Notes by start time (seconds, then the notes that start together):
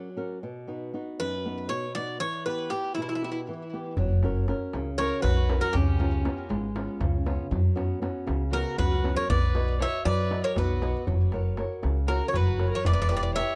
Already playing: F#3
0.17 C#4 F#4 A#4
0.43 B2
0.67 B3 D#4 F#4
0.94 B3 D#4 F#4
1.20 F#2 B4
1.45 B3 D#4 F#4
1.69 B2 C#5
1.95 B3 D#4 F#4 D5
2.20 E3 C#5
2.46 B3 E4 G4 B4
2.70 B3 E4 G4
2.95 B2 E4
3.02 E4
3.09 E4
3.15 E4
3.22 B3 E4 G4
3.32 E4
3.49 E3
3.73 B3 E4 G4
3.97 F#1 F#3, darbuka dum
4.23 C#4 F#4 A#4, darbuka tek
4.48 C#4 F#4 A#4, darbuka tek
4.73 C#2 C#3, darbuka tek
4.98 C#4 F#4 A#4 C#5, darbuka tek
5.22 B1 F#3 F#4 B4, darbuka tek, darbuka dum
5.49 C#4 F#4 A#4, darbuka tek
5.61 F#4 A#4
5.73 C#2 C#3 C#4 G4, darbuka dum
6.00 B3 C#4 F4, darbuka tek
6.25 B3 C#4 F4, darbuka tek
6.49 G#1 G#3, darbuka tek
6.75 B3 C#4 F4, darbuka tek
7.00 C#2 C#3, darbuka tek, darbuka dum
7.26 B3 C#4 F4, darbuka tek
7.51 F#2 F#3, darbuka dum
7.75 B3 C#4 F#4, darbuka tek
8.02 B3 C#4 F#4, darbuka tek
8.27 C#2 C#3, darbuka tek
8.51 B3 C#4 F#4 A#4, darbuka tek
8.78 C#2 F#3 F#4 B4, darbuka tek, darbuka dum
9.04 B3 C#4 F#4, darbuka tek
9.17 A#4 C#5
9.29 B1 B3 B4 D5, darbuka dum
9.54 F#4 B4 D#5, darbuka tek
9.80 F#4 B4 C#5 D#5 E5, darbuka tek
10.05 F#2 F#3 B4 D5, darbuka tek
10.30 F#4 B4 D#5, darbuka tek
10.44 A#4 C#5, darbuka tek
10.56 B1 B3 F#4 B4, darbuka tek, darbuka dum
10.69 darbuka tek
10.81 F#4 B4 D#5, darbuka tek
11.07 F#1 F#3, darbuka dum
11.32 F#4 A#4 C#5, darbuka tek
11.57 F#4 A#4 C#5, darbuka tek
11.83 C#2 C#3, darbuka tek
12.07 F#4 A#4 C#5, darbuka tek
12.26 A#4 C#5
12.33 F#1 F#3 F#4 B4, darbuka tek, darbuka dum
12.58 F#4 A#4 C#5, darbuka tek
12.71 A#4 C#5
12.85 E1 E3 B4 D5, darbuka dum
12.93 D5
13.02 D5
13.09 E4 G4 B4 D5, darbuka tek
13.17 D5
13.23 D5
13.35 E4 G4 B4 C#5 E5, darbuka tek